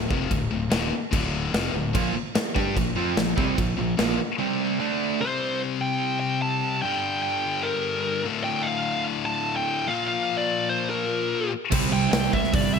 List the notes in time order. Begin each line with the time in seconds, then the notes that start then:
0.10 F1 F2 C3 F3, kick
0.30 D1 D2 A2, kick, crash
0.51 D1 D2 A2
0.70 D#1 D#2 A#2 D#3, snare, crash
1.11 D1 D2 A2 D3, kick, crash
1.53 F1 F2 C3 F3, snare, crash
1.74 D1 D2 A2
1.93 A#1 A#2 F3 A#3, kick, crash
2.15 muted overdriven electric guitar stroke, muted distorted electric guitar stroke, muted fingered electric bass stroke
2.35 muted overdriven electric guitar stroke, muted distorted electric guitar stroke, muted fingered electric bass stroke, snare, crash
2.55 G2 G3 D4 G4, kick
2.76 A#1 A#2 F3, kick, crash
2.96 F2 F3 C4 F4
3.16 A#1 A#2 F3, snare, crash
3.36 C2 C3 G3 C4, kick
3.57 A#1 A#2 F3, kick, crash
3.77 A#1 A#2 F3
3.97 A#1 A#2 F3 A#3, snare, crash
4.39 C3 G3 C4
4.80 D3 A3 D4
5.20 C3 G3 C4 C5
5.81 G5
6.20 G5
6.42 A5
6.82 G2 D3 G3 G5
7.22 G5
7.63 A#4
8.25 D2 A2 D3
8.44 G5
8.63 F5
9.25 A5
9.56 G5
9.87 A#2 F3 A#3 F5
10.07 F5
10.38 D5
10.69 C5
10.90 A#4
11.71 C2 C3 G3 C4, kick, crash
11.92 C2 G5
12.12 C2 G5, snare, open hi-hat
12.33 C2 E5, kick
12.44 snare
12.54 G1 D5, kick, open hi-hat
12.73 C2 E5